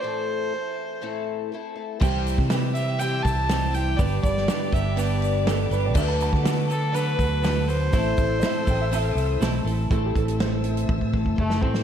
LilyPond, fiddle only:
\new Staff \with { instrumentName = "Fiddle" } { \time 4/4 \key a \dorian \tempo 4 = 122 c''2 r2 | r4. e''8 g''8 a''4 g''8 | d''8 d''4 e''8 d''4 r4 | r4. a'8 b'4. c''8~ |
c''2. r4 | r2. a8 c'8 | }